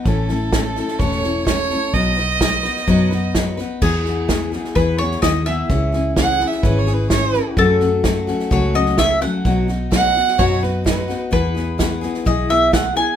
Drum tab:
CC |----------------|----------------|x---------------|----------------|
HH |----p-------p---|----p-------p---|----p-------p---|----p-------p---|
SD |o-o-o-ooooo-o-o-|o-o-o-ooo-o-o-o-|o-o-o-ooo-ooo-o-|o-o-o-ooo-o-o-o-|
BD |o---o---o---o---|o---o---o---o---|o---o---o---o---|o---o---o---o---|

CC |----------------|----------------|----------------|
HH |----p-------p---|----p-------p---|----p-------p---|
SD |o-o-o-ooo-ooo-o-|o-o-o-ooo-o-o-o-|o-o-o-ooo-o-o-o-|
BD |o---o---o---o---|o---o---o---o---|o---o---o---o---|